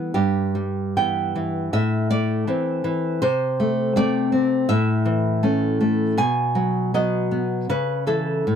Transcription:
nylon-string guitar
Already playing: E3 G3 B3 A4
0.14 G2 G4
0.55 G3
0.97 E3 B3 G5
1.35 E3
1.73 A2 E5
2.10 A3 D5
2.47 E3 C4
2.84 E3
3.22 C3 C5
3.60 A3
3.96 A3 C4 D5
4.32 C4
4.69 A2 E5
5.05 E3
5.43 A3 C#4
5.81 A3
6.17 B2 G#5
6.55 F#3
6.94 F#3 B3 D#5
7.31 B3
7.69 C#3 B4
8.07 E3 E4 A4
8.47 A2

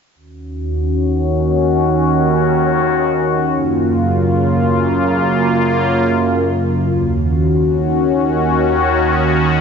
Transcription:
analog synth pad
0.15 D#2 D#3 C#4 F#4
3.51 F#2 C#3 A#3 F4
6.87 D#2 D#3 C#4 F#4

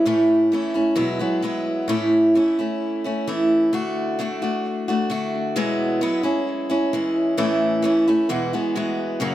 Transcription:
steel-string acoustic guitar
0.05 A2 E3 A3 C#4 E4
0.52 E3 A3 C#4 E4
0.74 A3 C#4 E4
0.96 E2 B2 F#3 G#3 B3 E4
1.19 F#3 G#3 B3 E4
1.42 F#3 G#3 B3 E4
1.88 A2 E3 A3 C#4 E4
2.35 E3 A3 C#4 E4
2.59 A3 C#4 E4
3.04 A3 C#4 E4
3.27 E3 A3 C#4 E4
3.73 D3 A3 D4 F#4
4.19 D3 A3 D4 F#4
4.42 A3 D4 F#4
4.88 A3 D4 F#4
5.10 D3 A3 D4 F#4
5.56 E2 B2 F#3 G#3 B3 E4
6.01 F#3 G#3 B3 E4
6.23 G#3 C#4 E4
6.70 G#3 C#4 E4
6.93 E3 G#3 C#4 E4
7.37 A2 E3 A3 C#4 E4
7.82 E3 A3 C#4 E4
8.07 A3 C#4 E4
8.29 E2 B2 E3 G#3 B3 F#4
8.53 E3 G#3 B3 F#4
8.76 E3 G#3 B3 F#4
9.20 F#2 C#3 F#3 A#3 C#4 F#4

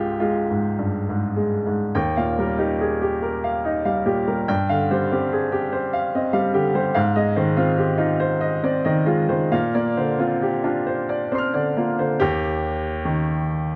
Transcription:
grand piano
Already playing: C#2 G#3 F4 G4
0.20 G#3 F4
0.50 G#2
0.79 G2
1.09 G#2
1.36 G#3
1.66 G#2
1.95 D#2 G5
2.17 A#2 F5
2.39 G3 A#4
2.58 D#4 G4
2.81 G#4
3.02 G4
3.22 A#4
3.44 F5
3.65 D#4 D#5
3.85 G3 F5
4.06 A#2 G4
4.27 G3 A#4
4.48 G2 G5
4.69 D3 F5
4.91 G3 C5
5.12 C4 G4
5.33 G#4
5.52 G4
5.72 C5
5.93 F5
6.15 C4 D#5
6.33 G3 F5
6.54 D3 G4
6.75 G3 C5
6.95 G#2 F5
7.16 G#3 D#5
7.36 D#3 C5
7.57 C4 F4
7.78 G4
7.98 D#4 F4
8.20 C5
8.41 D#5
8.63 C4 D5
8.85 D#3 D#5
9.06 G#3 F4
9.29 D#3 C5
9.52 A#2 F5
9.75 A#3 D5
9.97 D3 C5
10.19 C4 F4
10.42 G4
10.64 D4 F4
10.87 C5
11.09 D5
11.32 C4 C5 D5 C6
11.38 F6
11.54 D3 D5
11.77 A#3 F4
11.99 D3 C5
12.20 D#2 G4
13.05 D#3

